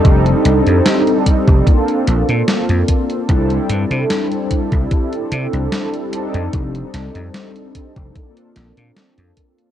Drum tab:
HH |xxxxxxxxxxxxxxxx|xxxxxxxxxxxxxxxx|xxxxxxxxxxxxxxxx|
SD |----o-------o---|----o-------o---|--o-o-----o-o---|
BD |o-----ooo-----o-|o-----ooo-------|o-----ooo-----o-|